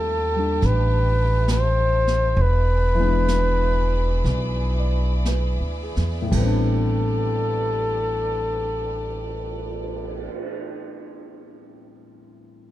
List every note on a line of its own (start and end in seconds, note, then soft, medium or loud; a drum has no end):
0.00 0.59 D#2 medium
0.00 2.37 F3 soft
0.00 0.35 G3 soft
0.00 2.38 A3 soft
0.00 2.39 C4 soft
0.00 2.40 E4 soft
0.00 2.35 G4 medium
0.00 0.67 A4 medium
0.00 6.28 E5 medium
0.00 2.34 G5 medium
0.00 2.34 A5 medium
0.36 2.38 G3 soft
0.36 2.40 D4 soft
0.62 2.34 A1 medium
0.62 brush sweep soft
0.62 snare soft
0.66 1.51 B4 medium
1.48 2.43 C5 loud
1.48 snare soft
1.48 hi-hat pedal soft
2.07 snare soft
2.37 4.21 E1 medium
2.37 6.28 G#4 medium
2.37 6.27 D5 medium
2.37 6.27 B5 medium
2.37 brush sweep soft
2.41 5.27 B4 medium
2.95 6.25 E3 medium
2.95 6.31 G#3 soft
3.00 6.32 B3 soft
3.00 6.34 D4 soft
3.06 6.35 E4 medium
3.28 snare soft
3.28 hi-hat pedal soft
4.24 5.56 B1 medium
4.24 brush sweep soft
4.24 snare soft
4.79 5.50 D5 soft
5.25 6.12 B4 soft
5.25 snare soft
5.25 hi-hat pedal soft
5.60 5.93 D2 soft
5.83 6.58 G#4 soft
5.96 6.30 E2 medium
5.96 snare soft
6.22 10.21 A2 medium
6.26 10.26 E3 medium
6.31 10.27 A1 medium
6.31 10.30 G3 soft
6.31 10.27 G4 medium
6.31 10.27 A4 medium
6.31 10.29 A4 medium
6.31 10.28 B4 medium
6.31 10.28 D5 medium
6.31 kick soft
6.31 crash medium
6.37 10.36 B3 soft
6.41 10.40 C4 soft
6.47 10.46 D4 medium
7.06 cymbal swell soft